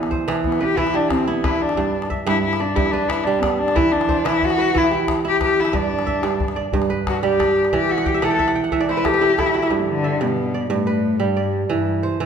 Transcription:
Already playing: kora E3 B4 D5
0.03 calabash click
0.11 kora C5, calabash thump
0.28 kora E3, calabash click
0.37 calabash click
0.44 cello B3, calabash thump, calabash click
0.52 calabash click
0.60 cello G4, kora B4, calabash click
0.77 kora E3, cello E4, calabash thump
0.87 calabash click
0.94 cello D4, kora G4
1.03 calabash click
1.10 cello C4, calabash thump, calabash click
1.19 calabash click
1.27 cello B3, kora E4, calabash click
1.44 cello E4, kora B4, calabash thump, calabash click
1.61 cello D4, calabash click
1.69 calabash click
1.77 kora G2, calabash thump
2.02 calabash click
2.10 kora E5, calabash thump
2.27 kora G2, cello E4, calabash click
2.44 cello E4
2.53 calabash click
2.60 cello D4, kora D5
2.75 kora G2, cello E4, calabash thump, calabash click
2.86 calabash click
2.92 cello D4, kora B4
3.02 calabash click
3.09 cello E4, calabash click
3.24 kora G3, cello D4
3.41 cello B3, kora D5, calabash thump, calabash click
3.59 cello D4
3.68 calabash click
3.75 kora E3, cello E4, calabash thump
3.92 cello D4
4.01 calabash click
4.09 kora C5, calabash thump
4.25 kora E3, cello E4, calabash click
4.42 cello F#4, calabash thump
4.50 calabash click
4.58 kora B4
4.75 kora E3, cello E4, calabash thump, calabash click
4.84 calabash click
4.91 kora G4
5.01 calabash click
5.08 calabash thump, calabash click
5.25 kora E4, cello G4
5.41 cello G4, kora B4, calabash thump, calabash click
5.60 cello E4
5.65 calabash click
5.73 kora G2, cello D4, calabash thump
5.99 calabash click
6.07 kora E5, calabash thump
6.23 kora G2, calabash click
6.40 calabash thump
6.48 calabash click
6.56 kora D5
6.73 kora G2, calabash thump, calabash click
6.82 calabash click
6.90 kora B4
6.99 calabash click
7.07 cello F#4, calabash thump, calabash click
7.23 kora G3, cello G4
7.39 kora D5, calabash thump, calabash click
7.65 calabash click
7.73 kora E3, cello G4, calabash thump, calabash click
7.81 calabash click
7.89 cello F#4, kora E5
7.98 kora F#5, calabash click
8.06 cello G4, kora G5, calabash thump, calabash click
8.14 kora E5
8.22 kora E3 F#5, cello A4, calabash click
8.31 kora G5
8.39 kora E5, calabash thump, calabash click
8.47 kora F#5, calabash click
8.55 kora G5
8.64 kora F#5, calabash click
8.72 kora E3 E5, calabash thump
8.80 kora D5, calabash click
8.89 cello E4, kora C5
8.97 kora B4
9.05 cello G4, kora A4, calabash thump, calabash click
9.14 kora B4
9.21 kora E4 A4
9.29 kora G4
9.38 cello E4, kora A4, calabash thump, calabash click
9.46 kora G4
9.54 kora F#4, calabash click
9.62 kora E4, calabash click
9.70 kora G2
9.81 cello E3
9.89 cello D3
10.04 kora E5
10.21 kora G2, cello B2
10.54 kora D5
10.70 kora G2, cello A2
10.87 kora B4
11.20 cello G2, kora G3
11.37 kora D5
11.70 cello G2, kora E3
12.03 kora C5
12.20 kora E3

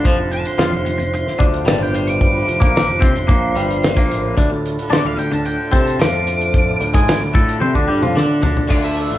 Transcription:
Already playing: tanpura D2 A2 D3, tonewheel organ F4
0.04 picked electric bass F1, clean electric guitar F2 F3, tonewheel organ F3 C4 C5, lead electric guitar A5, kick, closed hi-hat
0.18 picked electric bass F1, clean electric guitar F2
0.32 lead electric guitar A5, closed hi-hat
0.38 tanpura D3
0.45 lead electric guitar C6, closed hi-hat
0.58 picked electric bass F2, clean electric guitar F3 F4, snare, closed hi-hat
0.71 picked electric bass F1, clean electric guitar F2
0.85 picked electric bass F1, clean electric guitar F2, closed hi-hat
0.98 picked electric bass F1, tanpura D2, clean electric guitar F2, closed hi-hat
1.13 lead electric guitar C6, closed hi-hat
1.27 snare
1.39 picked electric bass D2, clean electric guitar D3 D4, kick, closed hi-hat
1.54 closed hi-hat
1.63 picked electric bass G1, clean electric guitar G2 G3, tanpura A2, closed hi-hat
1.68 lead electric guitar A5, snare
1.83 lead electric guitar G5
1.94 lead electric guitar C6, closed hi-hat
2.08 lead electric guitar D6, closed hi-hat
2.21 kick, closed hi-hat
2.26 tanpura D3
2.47 picked electric bass F1, clean electric guitar F2, closed hi-hat
2.60 picked electric bass A#1, clean electric guitar A#2 A#3, kick, closed hi-hat
2.65 lead electric guitar D6
2.76 snare, closed hi-hat
2.87 picked electric bass F1, clean electric guitar F2, tanpura D3
3.00 picked electric bass C2, clean electric guitar C3 C4, kick, closed hi-hat
3.04 lead electric guitar C6
3.15 picked electric bass F1, clean electric guitar F2, closed hi-hat
3.27 picked electric bass A#1, clean electric guitar A#2 A#3, kick, closed hi-hat
3.49 tanpura D2
3.54 picked electric bass G1, clean electric guitar G2 G3, closed hi-hat
3.71 closed hi-hat
3.83 snare, closed hi-hat
3.96 picked electric bass A#1, clean electric guitar A#2 A#3, kick
4.11 tanpura A2, closed hi-hat
4.36 picked electric bass D2, clean electric guitar D3 D4, tonewheel organ A3 D4 F4 A4, kick, closed hi-hat
4.50 picked electric bass D2, clean electric guitar D3
4.66 closed hi-hat
4.75 tanpura D3
4.79 closed hi-hat
4.90 picked electric bass D3, clean electric guitar D4 D5, lead electric guitar D5, snare, closed hi-hat
5.04 picked electric bass D2, clean electric guitar D3, lead electric guitar F5
5.17 picked electric bass D2, clean electric guitar D3, lead electric guitar G5, closed hi-hat
5.32 picked electric bass D2, clean electric guitar D3, lead electric guitar A5, closed hi-hat
5.38 tanpura D3
5.46 lead electric guitar G5, closed hi-hat
5.72 picked electric bass C3, clean electric guitar C4 C5, lead electric guitar A5, kick, closed hi-hat
5.87 closed hi-hat
5.99 tanpura D2, picked electric bass F2, clean electric guitar F3 F4, lead electric guitar D6, snare, closed hi-hat
6.27 closed hi-hat
6.41 closed hi-hat
6.54 kick, closed hi-hat
6.64 tanpura A2
6.80 picked electric bass D2, clean electric guitar D3, closed hi-hat
6.94 picked electric bass G#2, clean electric guitar G#3 G#4, kick, closed hi-hat
7.08 snare, closed hi-hat
7.21 picked electric bass D2, clean electric guitar D3
7.27 tanpura D3
7.34 picked electric bass A2, clean electric guitar A3 A4, kick, closed hi-hat
7.49 closed hi-hat
7.60 picked electric bass C3, clean electric guitar C4 C5, high tom
7.74 picked electric bass D2, clean electric guitar D3 D4, kick
7.87 picked electric bass G2, tanpura D3, clean electric guitar G3 G4
8.01 picked electric bass F2, clean electric guitar F3 F4, mid tom
8.15 picked electric bass D3, clean electric guitar D4 D5, snare
8.42 picked electric bass D2, clean electric guitar D3 D4, floor tom
8.51 tanpura D2
8.57 floor tom
8.68 picked electric bass D2, clean electric guitar D3 A3 D4 F4, tonewheel organ A3 D4 F4 A4, lead electric guitar D5, kick, crash
8.84 lead electric guitar E5
8.98 closed hi-hat
9.10 picked electric bass A1, closed hi-hat

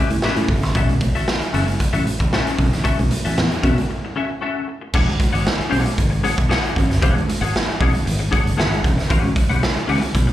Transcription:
Already playing: clean electric guitar C#4
0.00 clean electric guitar G4 B4 E5
0.10 fingered electric bass A2, muted clean electric guitar stroke, closed hi-hat
0.22 clean electric guitar C#4 G4 B4 E5, snare, muted conga
0.36 fingered electric bass A2, closed hi-hat
0.48 fingered electric bass G1, muted clean electric guitar stroke, kick, open hi-hat, low conga
0.63 fingered electric bass A1, muted clean electric guitar stroke, snare, closed hi-hat
0.75 fingered electric bass B1, clean electric guitar C#4 F#4 A4 E5, kick, closed hi-hat, muted conga
0.89 muted clean electric guitar stroke, closed hi-hat, high conga
1.01 muted clean electric guitar stroke, kick, closed hi-hat, high conga
1.15 clean electric guitar C#4 F#4 A4 E5, closed hi-hat
1.28 snare
1.41 muted clean electric guitar stroke, muted fingered electric bass stroke, closed hi-hat
1.53 fingered electric bass F#1, clean electric guitar C#4 F#4 A4 E5, closed hi-hat, low conga
1.67 muted clean electric guitar stroke, closed hi-hat, high conga
1.79 muted clean electric guitar stroke, kick, closed hi-hat, muted conga
1.93 fingered electric bass A1, clean electric guitar C#4 F#4 A4 E5, closed hi-hat, muted conga
2.05 muted clean electric guitar stroke, closed hi-hat, high conga
2.19 fingered electric bass A1, muted clean electric guitar stroke, kick, closed hi-hat
2.33 clean electric guitar C#4 F#4 A4 E5, snare, muted conga
2.47 closed hi-hat
2.59 fingered electric bass B1, muted clean electric guitar stroke, kick, open hi-hat, low conga
2.73 fingered electric bass A1, muted clean electric guitar stroke, snare, closed hi-hat
2.84 clean electric guitar C#4 F#4 A4 E5, kick, closed hi-hat
2.98 fingered electric bass B1, muted clean electric guitar stroke, closed hi-hat, muted conga, high conga
3.11 muted clean electric guitar stroke, closed hi-hat, high conga
3.25 fingered electric bass A1, clean electric guitar C#4 F#4 A4 E5, closed hi-hat
3.37 fingered electric bass E2, snare
3.51 muted clean electric guitar stroke, closed hi-hat
3.63 fingered electric bass B2, clean electric guitar C#4 F#4 A4 E5, kick, closed hi-hat, low conga
3.78 muted clean electric guitar stroke, closed hi-hat, high conga
3.89 muted clean electric guitar stroke
4.05 muted clean electric guitar stroke
4.16 clean electric guitar C#4 F#4 A4 E5
4.30 muted clean electric guitar stroke
4.41 clean electric guitar C#4 F#4 A4 E5
4.68 muted clean electric guitar stroke
4.81 muted clean electric guitar stroke
4.93 fingered electric bass E1, clean electric guitar D4 G#4 C#5 F#5, kick, crash, muted conga
5.08 muted clean electric guitar stroke, closed hi-hat, muted conga, high conga
5.19 muted clean electric guitar stroke, kick, closed hi-hat, high conga
5.33 fingered electric bass G#1, clean electric guitar D4 G#4 C#5 F#5, closed hi-hat
5.45 snare, muted conga
5.59 muted clean electric guitar stroke, muted fingered electric bass stroke, closed hi-hat
5.70 fingered electric bass B1, clean electric guitar D4 G#4 C#5 F#5, open hi-hat, low conga
5.85 muted clean electric guitar stroke, closed hi-hat, high conga
5.98 fingered electric bass G#1, kick, closed hi-hat, muted conga
6.10 muted clean electric guitar stroke, closed hi-hat
6.23 clean electric guitar D4 G#4 C#5 F#5, closed hi-hat, high conga
6.37 fingered electric bass B1, muted clean electric guitar stroke, kick, closed hi-hat
6.49 clean electric guitar D4 G#4 C#5 F#5, snare, muted conga
6.66 closed hi-hat
6.75 fingered electric bass G#1, muted clean electric guitar stroke, kick, closed hi-hat, low conga
6.90 fingered electric bass F#1, muted clean electric guitar stroke, snare, closed hi-hat
7.02 fingered electric bass E1, clean electric guitar D4 G#4 C#5 F#5, kick, closed hi-hat
7.16 muted clean electric guitar stroke, closed hi-hat, muted conga, high conga
7.28 muted clean electric guitar stroke, closed hi-hat, high conga
7.41 fingered electric bass G#1, clean electric guitar D4 G#4 C#5 F#5, closed hi-hat
7.54 snare, muted conga
7.67 muted fingered electric bass stroke, muted clean electric guitar stroke, closed hi-hat
7.80 fingered electric bass B1, clean electric guitar D4 G#4 C#5 F#5, kick, open hi-hat, low conga
7.94 muted clean electric guitar stroke, closed hi-hat, high conga
8.05 fingered electric bass G#1, muted clean electric guitar stroke, closed hi-hat, muted conga
8.19 muted clean electric guitar stroke, closed hi-hat, muted conga
8.31 clean electric guitar D4 G#4 C#5 F#5, kick, closed hi-hat, high conga
8.45 fingered electric bass G1, muted clean electric guitar stroke, closed hi-hat
8.57 fingered electric bass G#1, clean electric guitar D4 G#4 C#5 F#5, snare, muted conga
8.73 closed hi-hat, muted conga
8.84 fingered electric bass E1, muted clean electric guitar stroke, kick, closed hi-hat, low conga
8.98 muted clean electric guitar stroke, snare, closed hi-hat
9.10 fingered electric bass A1, clean electric guitar C#4 G4 B4 F#5, kick, closed hi-hat, muted conga
9.24 muted clean electric guitar stroke, closed hi-hat, muted conga, high conga
9.36 muted clean electric guitar stroke, kick, closed hi-hat, high conga
9.49 fingered electric bass B1, clean electric guitar C#4 G4 B4 F#5, closed hi-hat
9.63 snare
9.76 muted fingered electric bass stroke, muted clean electric guitar stroke, closed hi-hat, muted conga
9.88 fingered electric bass C#2, clean electric guitar C#4 G4 B4 F#5, open hi-hat, low conga
10.02 muted clean electric guitar stroke, closed hi-hat, high conga
10.15 fingered electric bass B1, muted clean electric guitar stroke, kick, closed hi-hat, muted conga
10.27 muted clean electric guitar stroke, closed hi-hat, muted conga

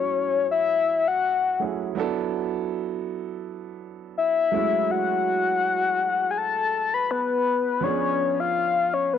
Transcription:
Already playing: grand piano F#3 A3 C#4 E4 G#4, soft synth lead C#5
0.51 soft synth lead E5
1.08 soft synth lead F#5
1.60 grand piano F#3 A3 C#4 E4 G#4
1.95 grand piano F#3 B3 D4 E4
2.00 grand piano A4
4.18 soft synth lead E5
4.52 grand piano F#3 A3 C#4 E4
4.56 grand piano G#3
4.91 soft synth lead F#5
6.31 soft synth lead G#5
6.38 soft synth lead A5
6.94 soft synth lead B5
7.11 soft synth lead B4
7.81 grand piano F3 B3 C#4 D4, soft synth lead C#5
7.85 grand piano G#4
8.40 soft synth lead F5
8.94 soft synth lead C#5
9.13 soft synth lead B4

